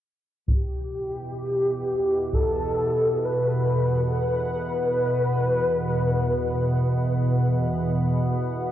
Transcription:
0.48 synth drone E2 B2, analog synth pad E4, taiko
0.52 soft synth lead G4
1.57 analog synth pad B4
2.24 analog synth pad F#5
2.33 soft synth lead A4, taiko
3.25 soft synth lead B4
4.19 soft synth lead B4

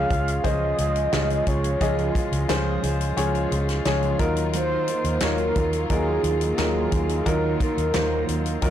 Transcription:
Already playing: steel-string acoustic guitar C#3 F3 G#3 F4, upright piano C#3 C#4 F4 G#4 C#5, string section C#3 F3 G#3 F4, soft synth lead F5
0.10 fingered electric bass C#2, steel-string acoustic guitar G#3 F4 G#4, kick, closed hi-hat
0.28 closed hi-hat
0.44 fingered electric bass C#2, steel-string acoustic guitar F3 G#3 F4 G#4, upright piano C#4 F4 G#4 C5, soft synth lead D#5, kick, closed hi-hat
0.78 fingered electric bass C#2, steel-string acoustic guitar G#3 F4 G#4, closed hi-hat
0.96 closed hi-hat
1.12 fingered electric bass C#2, steel-string acoustic guitar C#3 F3 G#3 F4 G#4, upright piano C#4 F4 G#4 D#5, snare, clap, closed hi-hat
1.30 closed hi-hat
1.46 fingered electric bass C#2, steel-string acoustic guitar G#3 F4 G#4, soft synth lead C#5, kick, closed hi-hat
1.64 closed hi-hat
1.81 fingered electric bass C#2, steel-string acoustic guitar C#3 F3 G#3 F4 G#4, upright piano C#3 C#4 F4 G#4 D#5, kick, closed hi-hat
1.99 closed hi-hat
2.15 steel-string acoustic guitar G#3 F4 G#4, kick, closed hi-hat
2.32 fingered electric bass C#2, closed hi-hat
2.49 fingered electric bass C#2, steel-string acoustic guitar C#3 F3 G#3 F4 G#4, upright piano C#4 F4 G#4 C5, snare, clap, closed hi-hat
2.82 fingered electric bass C#2, steel-string acoustic guitar G#3 F4 G#4, closed hi-hat
3.01 closed hi-hat
3.17 fingered electric bass C#2, steel-string acoustic guitar F3 G#3 F4 G#4, upright piano C#4 F4 G#4 C#5, closed hi-hat
3.35 closed hi-hat
3.51 fingered electric bass C#2, steel-string acoustic guitar G#3 F4 G#4, closed hi-hat
3.69 snare, closed hi-hat
3.85 fingered electric bass C#2, steel-string acoustic guitar C#3 F3 G#3 F4 G#4, upright piano C#4 F4 G#4 C#5, snare, clap, closed hi-hat
4.03 closed hi-hat
4.19 fingered electric bass D#2, string section D#3 F#3 A#3, upright piano D#3 F#3 D#4 F4 A#4, steel-string acoustic guitar A#3 D#4 F4, kick, closed hi-hat
4.36 closed hi-hat
4.53 steel-string acoustic guitar D#3 F#3 A#3 D#4 F4, soft synth lead C5, closed hi-hat
4.87 steel-string acoustic guitar A#3 D#4 F4, closed hi-hat
5.04 fingered electric bass D#2, closed hi-hat
5.20 fingered electric bass D#2, steel-string acoustic guitar D#3 F#3 A#3 D#4 F4, upright piano F#3 D#4 F4 C#5, soft synth lead A#4, snare, clap, closed hi-hat
5.38 closed hi-hat
5.55 fingered electric bass D#2, steel-string acoustic guitar A#3 D#4 F4, kick, closed hi-hat
5.73 closed hi-hat
5.89 fingered electric bass D#2, steel-string acoustic guitar F#3 A#3 D#4 F4, upright piano F#3 D#4 F4 A#4, soft synth lead G#4, kick, closed hi-hat
6.23 fingered electric bass D#2, steel-string acoustic guitar A#3 D#4 F4, closed hi-hat
6.41 closed hi-hat
6.58 fingered electric bass D#2, steel-string acoustic guitar D#3 F#3 A#3 D#4 F4, upright piano F#3 D#4 F4 A#4, soft synth lead G#4, snare, clap, closed hi-hat
6.91 fingered electric bass D#2, upright piano D#3, steel-string acoustic guitar A#3 D#4 F4, kick, closed hi-hat
7.09 closed hi-hat
7.26 fingered electric bass D#2, steel-string acoustic guitar D#3 F#3 A#3 D#4 F4, upright piano F#3 D#4 F4 A#4, soft synth lead A#4, kick, closed hi-hat
7.60 steel-string acoustic guitar A#3 D#4 F4, soft synth lead A#4, kick, closed hi-hat
7.77 fingered electric bass D#2, closed hi-hat
7.93 fingered electric bass D#2, steel-string acoustic guitar D#3 F#3 A#3 D#4 F4, upright piano F#3 D#4 F4 C5, snare, clap, closed hi-hat
8.27 fingered electric bass D#2, steel-string acoustic guitar A#3 D#4 F4, closed hi-hat
8.46 closed hi-hat
8.61 fingered electric bass D#2, steel-string acoustic guitar F#3 A#3 D#4 F4, upright piano F#3 D#4 F4 A#4, kick, closed hi-hat

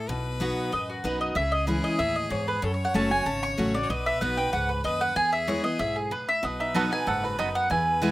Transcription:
0.08 upright bass B1, steel-string acoustic guitar B2, fiddle B4
0.40 steel-string acoustic guitar F#3 B3 D#4 F#4
0.72 upright bass A1, steel-string acoustic guitar F#2, mandolin D#5
0.90 mandolin F#4
1.04 upright bass B1, steel-string acoustic guitar F#3 B3 D#4 F#4, mandolin B4
1.21 mandolin D#5
1.35 upright bass C#2, steel-string acoustic guitar C#3, fiddle G#4, mandolin E5
1.52 mandolin D#5
1.67 steel-string acoustic guitar E3 G#3 C#4 E4, mandolin B4
1.84 mandolin D#5
1.99 upright bass D#2, steel-string acoustic guitar A2, mandolin E5
2.16 mandolin D#5
2.30 upright bass E2, steel-string acoustic guitar G#2, mandolin C#5
2.48 mandolin B4
2.62 steel-string acoustic guitar F#2, upright bass F#2, mandolin A4, fiddle C#5
2.74 mandolin C#5
2.85 mandolin F#5
2.94 upright bass F#1, steel-string acoustic guitar F#3 A3 C#4 F#4, mandolin A5
3.10 steel-string acoustic guitar C#4 F#4, mandolin G#5
3.26 upright bass G#1, steel-string acoustic guitar C#3, mandolin A5
3.43 mandolin C#6
3.57 upright bass A1, steel-string acoustic guitar F#3 A3 C#4 F#4
3.74 steel-string acoustic guitar C#4 F#4, mandolin D5
3.82 fiddle C#5
3.90 upright bass B1, steel-string acoustic guitar B2, fiddle B4, mandolin D#5
4.06 mandolin E5
4.21 upright bass B1, steel-string acoustic guitar F#3 B3 D#4 F#4, mandolin F#5
4.37 steel-string acoustic guitar D#4 F#4, mandolin G5
4.53 upright bass C#2, steel-string acoustic guitar G#2, mandolin F#5
4.69 mandolin B4
4.84 upright bass D#2, steel-string acoustic guitar F#2, fiddle B4, mandolin D#5
5.01 mandolin F#5
5.16 steel-string acoustic guitar E2, upright bass E2, fiddle G#4, mandolin G#5
5.33 mandolin E5
5.48 steel-string acoustic guitar E3 G#3 B3 E4, mandolin C#5
5.64 steel-string acoustic guitar B3 E4, mandolin D#5
5.79 upright bass B1, steel-string acoustic guitar G#2, mandolin E5
5.96 mandolin G#4
6.11 steel-string acoustic guitar A2, mandolin B4
6.29 mandolin E5
6.43 upright bass B1, steel-string acoustic guitar B2, five-string banjo F#4, fiddle B4, mandolin D#5
6.60 five-string banjo D#4, mandolin E5
6.74 steel-string acoustic guitar F#3 B3 D#4 F#4, mandolin B3 F#4 D#5 F#5 B5, five-string banjo A4
6.91 five-string banjo D#4, steel-string acoustic guitar D#4 F#4, mandolin G#5
7.07 upright bass F#1, steel-string acoustic guitar G#2, five-string banjo A4, mandolin F#5
7.24 five-string banjo F#4, mandolin B4
7.38 steel-string acoustic guitar F#2, mandolin B3 F#4 D#5 B5, five-string banjo D#4
7.55 five-string banjo B3, mandolin F#5
7.70 steel-string acoustic guitar E2, upright bass E2, five-string banjo E4, fiddle B4, mandolin G#5
8.02 steel-string acoustic guitar E3 G#3 B3 E4, mandolin B3 E4 B4 G#5, five-string banjo E4

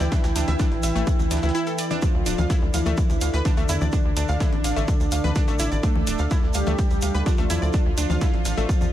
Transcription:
Already playing: supersaw synth E3 E4, analog synth pad E4 B4 G5
0.00 analog synth bass D2, synth arpeggio sound D5, snare, closed hi-hat, shekere
0.12 synth arpeggio sound D4, kick, snare, closed hi-hat, shekere
0.24 analog synth bass D2, snare, closed hi-hat, shekere
0.36 analog synth bass D2, synth arpeggio sound D4, snare, closed hi-hat, open hi-hat, shekere
0.48 analog synth bass D2, synth arpeggio sound E5, snare, closed hi-hat, low conga, shekere
0.59 synth arpeggio sound D4, kick, snare, closed hi-hat, shekere
0.72 analog synth bass A1, closed hi-hat
0.83 analog synth bass A1, synth arpeggio sound E5, open hi-hat, shekere
0.95 analog synth bass A1, synth arpeggio sound A3, shekere
1.07 kick, closed hi-hat, shekere
1.19 analog synth bass D2, low conga, shekere
1.31 analog synth bass D2, synth arpeggio sound D4, snare, closed hi-hat, open hi-hat, shekere
1.37 snare, closed hi-hat
1.43 analog synth bass D2, synth arpeggio sound E4, snare, closed hi-hat, shekere
1.49 snare, closed hi-hat
1.55 synth arpeggio sound E4, closed hi-hat, shekere
1.67 synth arpeggio sound A4, closed hi-hat, shekere
1.78 synth arpeggio sound D5, closed hi-hat, open hi-hat, shekere
1.91 synth arpeggio sound D4, snare, low conga, shekere
2.02 supersaw synth F3 F4, analog synth pad D4 A4 D5, kick, closed hi-hat, shekere
2.14 analog synth bass D2
2.26 analog synth bass D1, synth arpeggio sound D4, closed hi-hat, open hi-hat, shekere
2.38 analog synth bass D2, synth arpeggio sound F5, closed hi-hat, low conga, shekere
2.50 synth arpeggio sound E4, kick, snare, closed hi-hat, shekere
2.62 analog synth bass D2, snare
2.74 analog synth bass D2, supersaw synth E3 E4, synth arpeggio sound F5, closed hi-hat, open hi-hat, shekere
2.86 analog synth bass D2, synth arpeggio sound A3, shekere
2.97 kick, closed hi-hat, shekere
3.10 analog synth bass D2, closed hi-hat, low conga, shekere
3.21 analog synth bass D2, synth arpeggio sound F5, closed hi-hat, open hi-hat, shekere
3.33 analog synth bass D2, synth arpeggio sound B4, snare, shekere
3.45 supersaw synth D3 D4, synth arpeggio sound D4, kick, snare, closed hi-hat, shekere
3.57 analog synth bass D2, synth arpeggio sound A3, shekere
3.69 analog synth bass E2, synth arpeggio sound E4, closed hi-hat, open hi-hat, shekere
3.81 analog synth bass D2, synth arpeggio sound D5, low conga, shekere
3.92 synth arpeggio sound D4, kick, closed hi-hat, shekere
4.05 analog synth bass D2
4.17 analog synth bass D2, synth arpeggio sound D4, closed hi-hat, open hi-hat, shekere
4.28 analog synth bass D2, synth arpeggio sound F5, shekere
4.40 synth arpeggio sound E4, kick, snare, closed hi-hat, shekere
4.53 analog synth bass A1, closed hi-hat, low conga
4.64 analog synth bass A1, synth arpeggio sound F5, open hi-hat, shekere
4.76 analog synth bass A1, synth arpeggio sound A3, shekere
4.88 kick, closed hi-hat, shekere
5.00 analog synth bass D2, shekere
5.12 analog synth bass D2, synth arpeggio sound F5, closed hi-hat, open hi-hat, shekere
5.24 analog synth bass D2, synth arpeggio sound B4, low conga, shekere
5.35 synth arpeggio sound D4, kick, snare, closed hi-hat, shekere
5.48 analog synth bass A1, synth arpeggio sound A3, shekere
5.59 analog synth bass A1, synth arpeggio sound E4, closed hi-hat, open hi-hat, shekere
5.72 analog synth bass A1, synth arpeggio sound D5, closed hi-hat, shekere
5.83 supersaw synth A3 A4, synth arpeggio sound D4, kick, closed hi-hat, shekere
5.95 analog synth bass D2, low conga
6.07 analog synth bass D1, synth arpeggio sound D4, closed hi-hat, open hi-hat, shekere
6.18 analog synth bass D2, synth arpeggio sound F5, closed hi-hat, shekere
6.31 synth arpeggio sound E4, kick, snare, closed hi-hat, shekere
6.43 analog synth bass D2, snare
6.54 analog synth bass D2, supersaw synth G3 G4, synth arpeggio sound F5, closed hi-hat, open hi-hat, shekere
6.66 analog synth bass D2, synth arpeggio sound A3, low conga, shekere
6.79 kick, closed hi-hat, shekere
6.90 analog synth bass D2, closed hi-hat, shekere
7.02 analog synth bass D2, synth arpeggio sound F5, closed hi-hat, open hi-hat, shekere
7.14 analog synth bass D2, synth arpeggio sound B4, snare, shekere
7.26 supersaw synth F3 F4, synth arpeggio sound D4, kick, snare, closed hi-hat, shekere
7.37 analog synth bass D2, synth arpeggio sound A3, low conga, shekere
7.50 analog synth bass E2, synth arpeggio sound E4, closed hi-hat, open hi-hat, shekere
7.62 analog synth bass D2, synth arpeggio sound D5, shekere
7.73 synth arpeggio sound D4, kick, closed hi-hat, shekere
7.86 analog synth bass D2
7.98 analog synth bass D2, synth arpeggio sound D4, closed hi-hat, open hi-hat, shekere
8.10 analog synth bass D2, synth arpeggio sound F5, low conga, shekere
8.21 synth arpeggio sound E4, kick, snare, closed hi-hat, shekere
8.34 analog synth bass A1, closed hi-hat
8.45 analog synth bass A1, synth arpeggio sound F5, open hi-hat, shekere
8.57 analog synth bass A1, synth arpeggio sound A3, shekere
8.69 kick, closed hi-hat, shekere
8.81 analog synth bass E2, low conga, shekere

